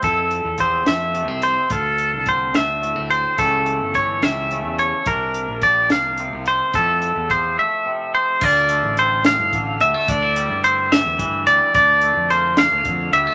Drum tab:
CC |------|------|------|------|
HH |xxxxxx|xxxxxx|xxxxxx|xxxxxx|
SD |---o--|---o--|---o--|---o--|
BD |o-o---|o-o---|o-o---|o-o---|

CC |------|x-----|------|------|
HH |xxx---|-xxxxx|xxxxxx|xxxxxx|
SD |------|---o--|---o--|---o--|
BD |o-o---|o---o-|o---o-|o---o-|